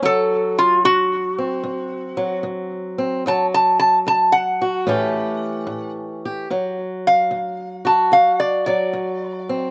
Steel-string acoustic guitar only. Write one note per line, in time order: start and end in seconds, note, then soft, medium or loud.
0.02 0.78 D2 medium
0.02 2.16 F#3 medium
0.85 1.60 D2 medium
1.38 2.97 C4 medium
1.64 2.40 D2 medium
2.17 3.26 F#3 medium
2.43 3.20 D2 medium
2.98 3.23 C4 medium
3.26 4.02 D2 medium
3.26 4.87 F#3 medium
4.07 4.83 D2 medium
4.62 4.85 F#4 medium
4.87 5.63 A2 medium
4.87 6.46 E3 medium
4.87 6.47 A3 medium
4.87 6.47 C#4 medium
4.87 6.24 G4 medium
5.67 6.44 A2 medium
6.25 6.48 G4 medium
6.50 7.26 D2 medium
6.50 8.66 F#3 medium
7.31 8.07 D2 medium
7.85 9.71 F#4 medium
8.12 8.88 D2 medium
8.67 9.71 F#3 medium
8.93 9.69 D2 medium
9.49 9.71 C4 medium